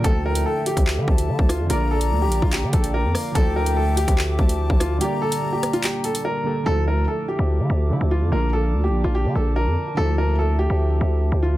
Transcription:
Already playing: D6
0.01 D2 D3 F3 A3 A4 E5 G5, kick, closed hi-hat
0.06 E4 A4
0.26 A#4
0.35 closed hi-hat
0.46 A4
0.66 G4, closed hi-hat
0.77 D2, kick, closed hi-hat
0.87 clap
0.97 D3
1.08 D2 A5, kick
1.18 closed hi-hat
1.29 D3
1.39 D2, kick
1.49 F4, cross-stick, closed hi-hat
1.60 F2
1.66 A#1 D3 F3 A#3 D5 A#5, closed hi-hat
1.70 F4 A#4 D5 D6
1.91 A4
2.01 closed hi-hat
2.11 D2
2.22 G4
2.27 A#1
2.32 closed hi-hat
2.42 A#1 F4, kick
2.52 G4, clap, closed hi-hat
2.63 D3
2.73 A#1 A4 G5, kick, closed hi-hat
2.84 closed hi-hat
2.94 A#4
3.04 F2
3.15 F5, cross-stick, open hi-hat
3.32 D2 D3 F3 A3 A4 E5 G5, kick, closed hi-hat
3.37 E4 A4
3.56 A#4
3.66 closed hi-hat
3.77 A4
3.97 G4, closed hi-hat
4.08 D2, kick, closed hi-hat
4.18 clap
4.39 D2 A5, kick
4.49 closed hi-hat
4.70 D2, kick
4.80 F4, cross-stick, closed hi-hat
4.98 D3 G3 A#3 G4 D5 G5 A#5, closed hi-hat
5.03 G4 D5
5.22 A4
5.32 closed hi-hat
5.53 G4
5.63 cross-stick, closed hi-hat
5.73 F4, closed hi-hat
5.83 G4, clap, closed hi-hat
6.04 A4, closed hi-hat
6.15 closed hi-hat
6.25 A#4
6.44 D3 G3 A#3 G4 A4
6.63 D2 D3 F3 A4 E5 A5 D6
6.68 A3 E4
6.88 A#4
7.08 A4
7.28 G4
7.39 D2
7.60 D3
7.70 D2
7.89 D3 F3 A3 E4
8.01 D2
8.11 F4
8.22 F2
8.29 A#1 D3 F3 A#3 A#4 D5
8.33 A#3 F4
8.53 A4
8.73 D2
8.84 G4
8.89 A#1
9.04 A#1 F4
9.15 G4
9.25 D3
9.35 A#1 A4
9.56 A#4
9.67 F2
9.94 D2 D3 F3 A4 E5
9.99 A3 E4
10.18 A#4
10.39 A4
10.59 G4
10.70 D2
11.01 D2
11.32 D2
11.43 F4

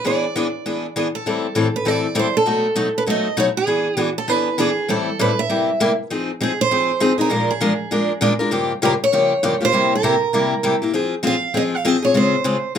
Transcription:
0.04 E3 B3 D4 G#4 D5
0.36 E3 B3 D4 G#4
0.66 E3 B3 D4 G#4
0.96 E3 B3 D4 G#4
1.15 A4
1.26 A2 E3 G3 C4 E4 A4
1.55 A2 E3 G3 C4 E4 A4
1.76 B4
1.85 A2 E3 G3 C4 E4 A4 D5
2.15 A2 E3 G3 C4 E4 A4
2.19 C5
2.37 A4
2.46 B2 F#3 A3 D#4 F#4
2.76 B2 F#3 A3 D#4 F#4
2.98 B4
3.06 B2 F#3 A3 D#4 F#4 D#5
3.37 B2 F#3 A3 D#4 F#4 C#5
3.57 G#4
3.67 E3 B3 D4 G#4
3.97 E3 B3 D4 F#4 G#4
4.18 A4
4.28 E3 B3 D4 G#4 B4
4.58 E3 B3 D4 G#4
4.88 A2 E3 G3 C4 E4 A4
5.19 A2 E3 G3 C4 E4 A4 B4
5.39 E5
5.50 C3 G3 A#3 E4 G4
5.80 C3 G3 A#3 E4 G4
6.10 F3 C4 D#4 G#4
6.41 F3 C4 D#4 G#4
6.61 C5
6.71 F3 C4 D#4 G#4
7.00 F3 C4 D#4 G#4
7.18 C4 D#4 G#4 A#4
7.30 A#2 F3 G#3 D4 F4 A#4
7.51 G#4
7.61 A#2 F3 G#3 D4 F4 A#4
7.91 A#2 F3 G#3 D4 F4 A#4
8.21 A#2 F3 G#3 D4 F4 A#4
8.39 G#3 D4 F4 A#4
8.51 G2 C#3 F3 A#3 F4 G4
8.82 G2 C#3 F3 A#3 F4 G4 A#4
9.04 C#5
9.13 G2 C#3 F3 A#3 F4 G4
9.43 G2 C#3 F3 A#3 F4 G4
9.61 F3 A#3 F4 G4
9.65 C5
9.73 C3 G3 A#3 E4 G4
9.95 A#4
10.03 C3 G3 A#3 E4 G4
10.33 C3 G3 A#3 E4 G4
10.63 C3 G3 A#3 E4 G4
10.82 A#3 E4 G4
10.94 F3 C4 F4 G#4
11.23 F3 C4 F4 G#4
11.27 F5
11.54 F3 C4 F4 G#4 D#5
11.75 F5
11.85 F3 C4 F4 G#4 D#5
12.02 C4 F4 G#4 C#5
12.14 C#3 G#3 C4 F4 G#4 C5
12.44 C#3 G#3 C4 F4 G#4
12.75 C#3

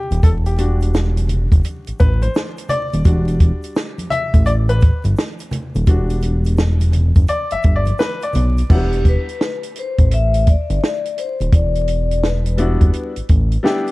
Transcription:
Already playing: G4
0.11 D#1, closed hi-hat, shaker
0.23 E1 A4, kick, closed hi-hat, shaker
0.46 G4, closed hi-hat, shaker
0.58 G3 D4 F#4, closed hi-hat, shaker
0.81 closed hi-hat, shaker
0.94 snare, shaker
1.17 closed hi-hat, high conga, shaker
1.29 closed hi-hat, low conga, shaker
1.52 F#1, kick, closed hi-hat, shaker
1.64 closed hi-hat, high conga, shaker
1.87 A1, closed hi-hat, shaker
1.99 A1 B4, kick, closed hi-hat, shaker
2.22 C5, closed hi-hat, high conga, shaker
2.34 snare, shaker
2.57 closed hi-hat, shaker
2.69 D5, closed hi-hat, low conga, shaker
2.93 D#1, closed hi-hat, shaker
3.05 E1 G3 D4 F#4, kick, closed hi-hat, shaker
3.28 closed hi-hat, shaker
3.40 kick, closed hi-hat, shaker
3.63 closed hi-hat, shaker
3.75 snare, shaker
3.98 closed hi-hat, high conga, shaker
4.10 E5, closed hi-hat, low conga, shaker
4.34 A1, kick, closed hi-hat, shaker
4.46 D5, closed hi-hat, high conga, shaker
4.68 B4, closed hi-hat, shaker
4.81 kick, closed hi-hat, shaker
5.04 G1, closed hi-hat, high conga, shaker
5.17 snare, shaker
5.39 closed hi-hat, shaker
5.51 closed hi-hat, low conga, shaker
5.75 D#1, closed hi-hat, shaker
5.87 E1 G3 D4 F#4, kick, closed hi-hat, shaker
6.10 closed hi-hat, shaker
6.21 closed hi-hat, shaker
6.45 closed hi-hat, shaker
6.57 snare, shaker
6.80 closed hi-hat, high conga, shaker
6.92 closed hi-hat, low conga, shaker
7.15 F#1, kick, closed hi-hat, shaker
7.27 D5, closed hi-hat, high conga, shaker
7.50 G1 E5, closed hi-hat, shaker
7.63 G1, kick, closed hi-hat, shaker
7.76 D5
7.86 closed hi-hat, high conga, shaker
7.98 B4, snare, shaker
8.21 D5, closed hi-hat, shaker
8.33 B1, closed hi-hat, low conga, shaker
8.57 closed hi-hat, shaker
8.69 E1 F#3 B3 D4 E4 G4 F#5, kick, crash
8.76 G3
8.92 closed hi-hat
9.05 B4, kick, closed hi-hat
9.29 closed hi-hat
9.41 snare
9.63 closed hi-hat
9.76 C5, closed hi-hat
9.98 A1, kick, closed hi-hat
10.11 E5, closed hi-hat
10.34 closed hi-hat
10.47 D5, kick, closed hi-hat
10.70 G1, closed hi-hat
10.84 D5, snare
11.05 closed hi-hat
11.18 C5, closed hi-hat
11.40 D#1, closed hi-hat
11.52 E1 D5, kick, closed hi-hat
11.75 closed hi-hat
11.88 closed hi-hat
12.11 closed hi-hat
12.23 B4, snare
12.46 closed hi-hat
12.57 G3 B3 D4 E4 F#4, closed hi-hat
12.81 F#1, kick, closed hi-hat
12.94 closed hi-hat
13.16 A1, closed hi-hat
13.29 A1, kick, closed hi-hat
13.52 closed hi-hat
13.63 G3 B3 D4 E4 G4, snare
13.87 closed hi-hat

